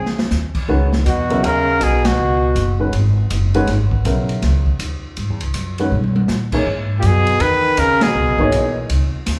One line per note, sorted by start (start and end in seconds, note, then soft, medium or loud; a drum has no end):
0.00 0.30 E2 medium
0.00 0.27 C4 medium
0.00 0.27 G#4 medium
0.06 snare soft
0.18 snare medium
0.31 0.68 D#2 medium
0.31 snare medium
0.31 hi-hat pedal medium
0.55 kick medium
0.55 crash medium
0.68 1.05 C#2 medium
0.68 0.91 D#3 medium
0.68 0.91 G#3 medium
0.68 0.91 C#4 medium
0.68 0.91 F#4 medium
0.68 0.91 B4 medium
0.93 snare medium
1.05 1.42 E2 medium
1.05 1.45 B2 medium
1.05 1.46 F#4 medium
1.05 hi-hat pedal soft
1.05 ride medium
1.30 1.42 C#3 medium
1.30 1.42 F#3 medium
1.30 1.43 B3 medium
1.30 1.43 E4 medium
1.30 1.43 A#4 medium
1.30 ride soft
1.44 1.80 D#2 medium
1.44 1.81 C#3 medium
1.44 1.84 A#4 loud
1.44 ride medium
1.80 2.17 B1 medium
1.80 2.05 B2 medium
1.80 2.07 G#4 medium
1.80 hi-hat pedal medium
1.80 ride medium
2.05 2.80 B2 medium
2.05 2.80 F#4 medium
2.05 snare medium
2.05 ride medium
2.18 2.54 C#2 medium
2.55 2.92 F#1 medium
2.55 hi-hat pedal soft
2.55 ride medium
2.80 2.92 D#3 medium
2.80 2.92 G#3 medium
2.80 2.92 C#4 medium
2.80 2.92 F#4 medium
2.80 2.92 B4 medium
2.93 3.29 G#1 medium
2.93 ride medium
3.30 3.67 F#1 medium
3.30 hi-hat pedal medium
3.30 ride medium
3.54 3.67 D#3 medium
3.54 3.67 G#3 medium
3.54 3.67 C#4 medium
3.54 3.67 F#4 medium
3.54 3.67 B4 medium
3.54 ride soft
3.67 4.04 G#1 medium
3.67 snare soft
3.67 ride medium
3.91 kick medium
4.05 4.41 B1 loud
4.05 4.62 C#3 medium
4.05 4.62 F#3 medium
4.05 4.62 B3 medium
4.05 4.62 E4 soft
4.05 4.62 A#4 medium
4.05 hi-hat pedal soft
4.05 ride medium
4.29 ride soft
4.42 4.78 C#2 medium
4.42 snare soft
4.42 ride medium
4.66 kick medium
4.79 5.16 D#2 medium
4.79 hi-hat pedal medium
4.79 ride medium
5.17 5.30 G#2 medium
5.17 ride medium
5.30 5.42 E2 medium
5.41 5.54 C#2 medium
5.41 ride medium
5.54 5.91 F#2 medium
5.54 hi-hat pedal medium
5.54 ride medium
5.78 5.91 D#3 medium
5.78 5.91 G#3 medium
5.78 5.91 C#4 medium
5.78 5.91 F#4 medium
5.78 5.91 B4 medium
5.78 ride soft
5.91 6.28 B2 medium
5.91 high tom medium
6.04 high tom medium
6.16 high tom medium
6.28 6.65 A#2 medium
6.28 snare medium
6.28 hi-hat pedal medium
6.52 6.65 E3 medium
6.52 6.65 A#3 medium
6.52 6.65 D#4 medium
6.52 6.65 G#4 medium
6.52 6.66 C#5 medium
6.52 kick medium
6.52 crash medium
6.65 7.02 G#2 medium
6.99 7.39 F#2 medium
6.99 7.07 A#2 medium
6.99 7.07 G4 medium
6.99 hi-hat pedal soft
6.99 ride medium
7.06 7.44 B2 medium
7.06 7.43 G#4 medium
7.27 ride soft
7.40 7.76 E2 medium
7.40 7.81 D#3 medium
7.40 7.81 B4 loud
7.40 ride medium
7.77 8.14 D#2 medium
7.77 8.04 C#3 medium
7.77 8.04 A#4 medium
7.77 hi-hat pedal medium
7.77 ride medium
8.01 8.77 B2 medium
8.01 8.77 G#4 medium
8.01 snare medium
8.01 ride medium
8.15 8.27 C#2 medium
8.27 8.39 B1 medium
8.38 8.51 G#1 medium
8.38 8.87 E3 medium
8.38 8.87 A#3 medium
8.38 8.88 D#4 medium
8.38 8.87 G#4 medium
8.38 8.88 C#5 medium
8.38 kick medium
8.52 8.88 B1 medium
8.52 hi-hat pedal medium
8.52 ride medium
8.89 9.12 C#2 medium
8.89 ride medium
9.14 muted upright bass stroke soft
9.26 9.39 D#2 medium
9.26 snare soft
9.26 hi-hat pedal medium
9.26 ride medium